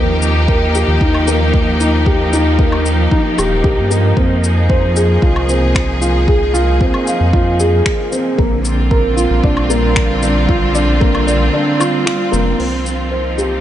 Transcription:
Already playing: D#2 F3 A#3 D#4 G4
0.22 shaker
0.48 A#4, kick
0.75 G4, shaker
0.88 D#2
1.01 D#2 D#4, kick
1.14 low woodblock
1.28 A#3, shaker
1.54 kick
1.80 D#4, shaker
2.06 G4, kick
2.33 D#4, shaker
2.59 A#3, kick
2.72 low woodblock
2.86 shaker
3.11 D#4, kick
3.38 D#1 G4, low woodblock, shaker
3.64 A#1 G4, kick
3.78 G2
3.90 A#3, shaker
4.17 F2 C4, kick
4.44 G#4, shaker
4.69 C5, kick
4.96 G#4, shaker
5.22 C2 F4, kick
5.36 low woodblock
5.49 C4, shaker
5.75 finger snap, kick
6.01 F4, shaker
6.28 G#4, kick
6.54 F4, shaker
6.81 C4, kick
6.94 low woodblock
7.07 F5, shaker
7.21 F2
7.33 F4, kick
7.59 G#4, shaker
7.85 G#4, finger snap, kick
8.12 C4, shaker
8.38 A#1 D3 A#3, kick
8.55 G3
8.64 C4 F4, shaker
8.91 A#4, kick
9.17 F4, shaker
9.30 A#1
9.44 A#1 D4, kick
9.57 low woodblock
9.70 A#3, shaker
9.96 finger snap, kick
10.23 D4, shaker
10.48 F4, kick
10.75 D4, shaker
11.01 A#3, kick
11.15 low woodblock
11.27 D5, shaker
11.53 D4
11.80 F4, low woodblock, shaker
12.06 F4, finger snap
12.32 F1 A#3, shaker
12.58 C2 F3 C4, crash
12.80 A#3
12.86 shaker
13.08 D#4 C5
13.38 G4, shaker

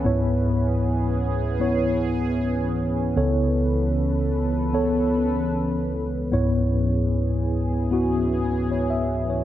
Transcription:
Already playing: E3 B3 C#4 B4
0.05 C#2 G#2 B3 E4 G#4 C#5
1.60 B3 E4 C#5
3.16 C#2 C#3 B3 A4 B4 C#5
4.73 B3 A4 C#5
6.32 C#2 G#2 E3 B3 E4 G#4 C#5
7.91 B3 E4 F#4
8.71 C#5
8.90 E5
9.30 C#5

